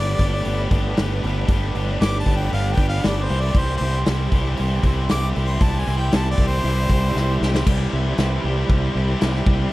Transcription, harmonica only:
Already playing: D5
2.02 D6
2.20 A5
2.36 G5
2.53 F5
2.73 G5
2.89 F5
3.06 D5
3.24 C5
3.41 D5
3.58 C5
3.77 C5
5.11 D6
5.46 C6
5.63 A5
5.79 G#5
5.97 G5
6.15 A5
6.31 D5
6.47 C5

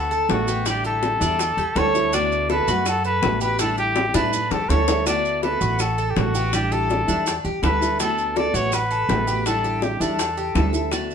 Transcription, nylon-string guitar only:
0.28 D3 A3 B3 F#4
0.47 A3 B3 F#4
0.65 D3 G3 D4 E4
1.20 G3 D4 E4
1.39 muted nylon-string guitar stroke
1.76 D3 G3 D4 E4
1.94 G3 D4 E4
2.13 D3 A3 B3 F#4
2.68 A3 B3 F#4
2.86 muted nylon-string guitar stroke
3.23 D3 A3 B3 F#4
3.42 A3 B3 F#4
3.59 D3 G3 D4 E4
4.14 G3 D4 E4
4.34 muted nylon-string guitar stroke
4.70 D3 G3 D4 E4
4.88 G3 D4 E4
5.05 D3 A3 B3 F#4
5.61 A3 B3 F#4
5.79 muted nylon-string guitar stroke
6.16 D3 A3 B3 F#4
6.35 A3 B3 F#4
6.52 D3 G3 D4 E4
7.07 G3 D4 E4
7.26 muted nylon-string guitar stroke
7.62 D3 G3 D4 E4
7.81 G3 D4 E4
7.99 D3 A3 B3 F#4
8.54 A3 B3 F#4
8.72 muted nylon-string guitar stroke
9.09 D3 A3 B3 F#4
9.28 A3 B3 F#4
9.46 D3 G3 D4 E4
10.00 G3 D4 E4
10.19 muted nylon-string guitar stroke
10.55 D3 G3 D4 E4
10.74 G3 D4 E4
10.92 D3 A3 B3 F#4

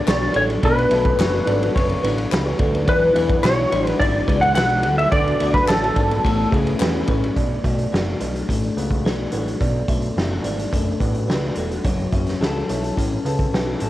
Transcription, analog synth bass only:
0.07 B1
0.35 A1
0.63 B1
0.91 B1
1.19 F#1
1.47 G#1
1.76 F#1
2.04 A1
2.32 C#2
2.60 D2
2.88 E2
3.16 E2
3.44 B1
3.72 A1
4.01 G#1
4.28 C#2
4.57 B1
4.84 D2
5.12 D2
5.41 D2
5.69 A1
5.96 G#1
6.25 A1
6.52 C#2
6.80 E2
7.09 A1
7.37 B1
7.65 B1
7.93 F#1
8.21 B1
8.49 A1
8.77 C#2
9.05 B1
9.33 A1
9.61 B1
9.88 B1
10.17 F#1
10.45 G#1
10.73 F#1
11.01 A1
11.29 C#2
11.57 E1
11.85 F#1
12.13 F#1
12.41 C#2
12.69 B1
12.98 A1
13.25 C#2
13.53 B1
13.82 A1

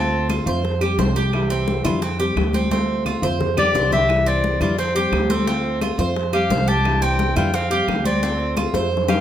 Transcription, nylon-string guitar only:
Already playing: D3 A3 C4 F4
0.46 A3 C4 F4
0.64 muted nylon-string guitar stroke
0.81 G3 C4 G4
0.98 F3 G3 C4 G4
1.33 C3 E3 G3 D4 E4
1.84 E3 G3 D4 E4
2.03 muted nylon-string guitar stroke
2.19 G3 C4 G4
2.36 F3 G3 C4 G4
2.71 D3 A3 C4 F4
3.22 A3 C4 F4
3.40 muted nylon-string guitar stroke
3.57 G3 C4 G4
3.74 F3 G3 C4 G4
4.08 C3 E3 G3 D4 E4
4.60 E3 G3 D4 E4
4.78 muted nylon-string guitar stroke
4.95 G3 C4 G4
5.12 F3 G3 C4 G4
5.47 D3 A3 C4 F4
5.99 A3 C4 F4
6.16 muted nylon-string guitar stroke
6.33 G3 C4 G4
6.50 F3 G3 C4 G4
6.84 C3 E3 G3 D4 E4
7.36 E3 G3 D4 E4
7.53 muted nylon-string guitar stroke
7.70 G3 C4 G4
7.88 F3 G3 C4 G4
8.22 D3 A3 C4 F4
8.74 A3 C4 F4
8.91 muted nylon-string guitar stroke
9.08 G3 C4 G4

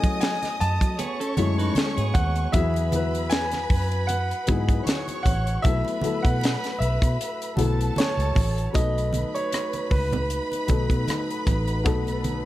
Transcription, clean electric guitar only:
0.99 B3 G#4
1.20 C#4 A4
1.38 E4 C#5
1.58 D#4 B4
1.77 C#4 A4
1.97 B3 G#4

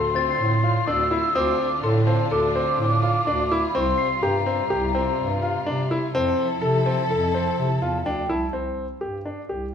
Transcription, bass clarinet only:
Already playing: D2
0.40 A2
0.87 D2
1.36 D2
1.83 A2
2.31 D2
2.79 A2
3.27 D2
3.75 C2
4.23 G2
4.70 C2
5.19 G2
5.66 C3
6.15 F2
6.62 C3
7.09 F2
7.58 C3
7.82 E2
8.05 D2
8.29 C2
8.53 C2
9.01 G2
9.49 C2

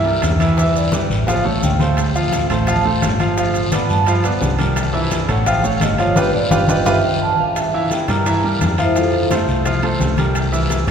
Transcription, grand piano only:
0.05 G3 G4 A#4
0.40 E3 E4 E5
0.58 E3 E4 E5
0.92 G3 G4 B4
1.28 F3 F4 F5
1.45 A3 A4 C#5
1.80 A3 A4 C5
2.15 F3 F4 F5
2.50 A3 A4 C5
2.68 F3 F4 F5
2.85 A3 A4 C5
3.20 F3 F4 F5
3.38 F3 F4 F5
3.73 B3 B4 D5
4.07 F3 F4 F5
4.24 B3 B4 D5
4.58 G3 G4 A#4
4.93 E3 E4 E5
5.28 A3 A4 C#5
5.46 F3 F4 F5
5.64 A3 A4 C#5
5.99 F3 F4 F5
6.17 F4 G4 B4
6.51 F4 G4 B4
6.69 F4 G4 B4
6.86 F4 G4 B4
7.74 E3 E4 E5
8.09 G3 G4 A#4
8.27 E3 E4 E5
8.44 G3 G4 A#4
8.78 F3 F4 F5
8.96 F3 F4 F5
9.31 A3 A4 C5
9.65 F3 F4 F5
9.83 A3 A4 C5
10.18 G3 G4 A#4
10.52 E3 E4 E5
10.87 G3 G4 A#4

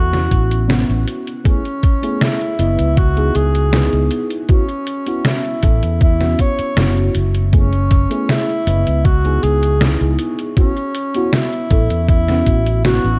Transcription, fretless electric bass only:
Already playing: E2
0.31 A1
0.89 A1
2.59 F#1
2.79 C#2
3.35 C#2
3.93 C#2
5.63 A1
5.83 E2
6.59 muted fretless electric bass stroke
6.77 F#1
7.15 F#1
8.67 F#1
8.87 C#2
9.43 C#2
10.01 C#2
11.71 A1
11.90 E2
12.46 A1
13.04 A1

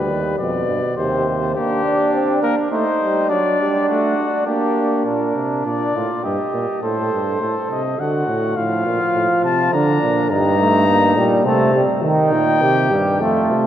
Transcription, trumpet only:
Already playing: B4
0.38 D5
0.97 C5
1.55 G4
2.42 A#4
2.71 C5
3.30 D5
3.89 F#4
4.47 G4
5.06 A#4
5.65 D5
6.24 D#5
6.83 C5
7.71 D#5
8.00 F#5
8.57 F5
9.44 A5
9.73 A#5
10.31 A#5
11.45 A5
12.03 G5
13.21 A5

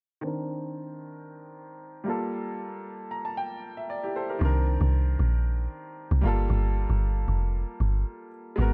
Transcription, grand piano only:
0.21 D#3 C4 D4
0.27 A#4
2.04 G3 A#3 F4
2.10 A4
3.11 A#5
3.25 A5
3.37 G5
3.77 E5
3.90 D5
4.03 E4 G4
4.16 A4 C5
4.29 G4 A#4
4.39 D#3 C4 D4
4.45 A#4
6.21 G3 A#3 F4
6.27 A4
8.56 G#3 B3 F#4
8.62 A#4

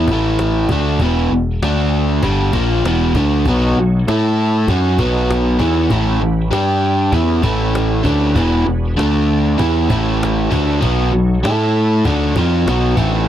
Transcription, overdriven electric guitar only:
0.11 A2 E3 A3
0.71 D3 A3 D4
1.01 E2 B2 E3
1.32 E2 B2
1.62 D3 A3 D4
2.22 G2 D3 G3
2.53 A#2 F3 A#3
2.85 E2 B2 E3
3.16 D3 A3 D4
3.48 B2 F#3 B3
3.79 B2 F#3
4.08 A3 E4 A4
4.69 F#3 C#4 F#4
4.99 B2 F#3 B3
5.59 E3 B3 E4
5.91 A2 E3 A3
6.21 A2 E3
6.51 G3 D4 G4
7.12 E3 B3 E4
7.42 A2 E3 A3
8.03 D3 A3 D4
8.35 E2 B2 E3
8.65 E2 B2
8.97 D3 A3 D4
9.58 E3 B3 E4
9.89 A2 E3 A3
10.50 D3 A3 D4
10.80 B2 F#3 B3
11.12 B2 F#3
11.43 A3 E4 A4
12.05 D3 A3 D4
12.37 F3 C4 F4
12.68 B2 F#3 B3
12.97 A2 E3 A3

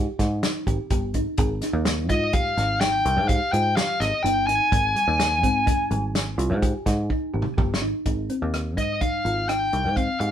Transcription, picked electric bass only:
0.19 G#2
0.67 G#1
0.91 G1
1.14 G#1
1.38 G#1
1.73 D#2
2.10 G#2
2.57 G#1
3.05 C2
3.17 G#2
3.53 G#2
4.00 G#1
4.24 G1
4.49 G#1
4.72 G#1
5.08 D#2
5.43 G#2
5.91 G#1
6.38 C2
6.50 G#2
6.86 G#2
7.34 G#1
7.58 G1
7.81 G#1
8.06 G#1
8.42 D#2
8.78 G#2
9.25 G#1
9.73 C2
9.85 G#2
10.20 G#2

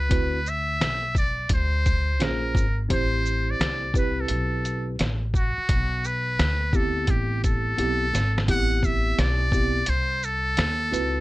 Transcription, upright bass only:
0.11 D2
0.81 B1
1.50 D2
2.20 A#1
2.55 G#1
2.90 A1
3.60 C2
4.30 B1
5.00 A1
5.58 muted upright bass stroke
5.69 B1
6.39 D2
7.08 A1
7.78 B1
8.13 G#1
8.48 A1
9.18 B1
9.88 C2
10.58 D#2
10.93 C#2

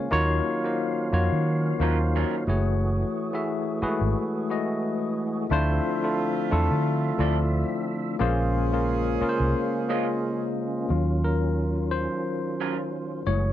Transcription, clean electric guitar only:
1.82 F#3 C#4 F4 A#4
2.16 F#3 C#4 F4 A#4
7.20 F3 C4 E4 A4
9.90 G#3 C#4 F4 C5
12.61 F#3 C#4 F4 A#4

